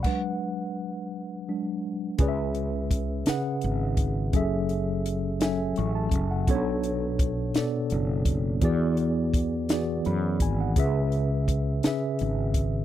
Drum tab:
CC |x-----|------|------|------|
HH |------|xxxxxx|xxxxxx|xxxxxx|
SD |------|---o--|---o--|---o--|
BD |o-----|o-o--o|o----o|o-o--o|

CC |------|------|
HH |xxxxxx|xxxxxx|
SD |---o--|---o--|
BD |o-o--o|o-o--o|